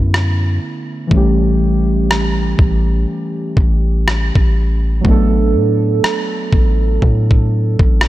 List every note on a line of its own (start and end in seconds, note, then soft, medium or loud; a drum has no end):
0.00 0.59 F#2 medium
0.00 1.05 D3 medium
0.00 1.06 A3 medium
0.00 1.07 B3 medium
0.00 1.09 C#4 medium
0.00 1.10 E4 medium
0.14 cross-stick loud
1.07 4.99 E3 medium
1.07 5.00 G3 medium
1.11 2.55 A1 loud
1.11 5.01 A3 medium
1.11 5.02 C#4 medium
1.11 kick loud
1.16 5.03 G4 medium
2.11 cross-stick loud
2.59 3.06 A1 medium
2.59 kick medium
3.57 4.32 A1 loud
3.57 kick loud
4.08 cross-stick loud
4.35 5.02 A1 medium
4.35 kick medium
5.01 8.08 F#3 medium
5.01 8.08 A3 medium
5.01 kick loud
5.05 5.56 A1 loud
5.05 8.08 B3 medium
5.05 8.08 D4 medium
5.10 8.08 A4 medium
5.54 6.01 A2 loud
6.04 cross-stick loud
6.53 7.00 A1 loud
6.53 kick medium
7.02 7.76 A2 loud
7.02 kick medium
7.31 kick medium
7.79 8.08 A1 loud
7.79 kick medium
8.01 cross-stick loud